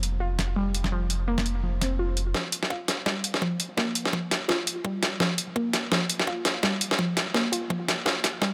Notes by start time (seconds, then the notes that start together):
Already playing: F1 F3
0.03 closed hi-hat
0.20 F4
0.39 snare, closed hi-hat
0.56 G3
0.74 closed hi-hat
0.84 snare
0.92 F3
1.10 closed hi-hat
1.28 A#3
1.38 snare, closed hi-hat
1.46 closed hi-hat
1.63 F3
1.81 C4, snare, closed hi-hat
1.99 F4
2.17 closed hi-hat
2.34 F3, kick, snare
2.52 closed hi-hat
2.63 snare
2.70 F4, kick
2.88 snare, closed hi-hat
3.06 G3, kick, snare
3.24 closed hi-hat
3.34 snare
3.42 F3, kick
3.60 closed hi-hat
3.77 A#3, kick, snare
3.95 closed hi-hat
4.05 snare
4.13 F3, kick
4.31 snare, closed hi-hat
4.48 F4, kick, snare
4.67 closed hi-hat
4.84 G3, kick
5.03 snare, closed hi-hat
5.20 F3, kick, snare
5.38 closed hi-hat
5.56 A#3, kick
5.73 snare, closed hi-hat
5.92 F3, kick, snare
6.10 closed hi-hat
6.20 snare
6.27 F4, kick
6.45 snare, closed hi-hat
6.63 G3, kick, snare
6.81 closed hi-hat
6.91 snare
6.99 F3, kick
7.17 snare, closed hi-hat
7.34 A#3, kick, snare
7.52 F4, closed hi-hat
7.70 F3, kick
7.88 F3, snare, closed hi-hat
8.06 F4, kick, snare
8.24 snare, closed hi-hat
8.42 G3, kick, snare